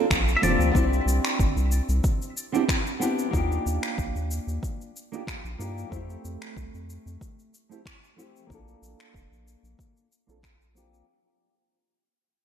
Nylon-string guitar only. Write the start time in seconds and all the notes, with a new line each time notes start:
0.42 A#3 C4 D4 F4 G4
0.71 B3 C4 D4
0.77 E4 G4
2.52 B3 C4 D4 E4 G4
3.00 B3 C4 D4 E4 G4
3.31 A#3 D4 D#4
3.36 F4 G4
5.12 A#3 D4 D#4 F4 G4
5.58 A#3 D4 D#4 F4 G4
5.89 A3 C4 E4
5.96 G4
7.69 A3 C4 E4 G4
8.16 A3 C4 E4 G4
8.47 A#3 C4 D4
8.52 F4 A4
10.27 A#3 C4 D4 F4 A4
10.74 A#3 C4 D4 F4 G4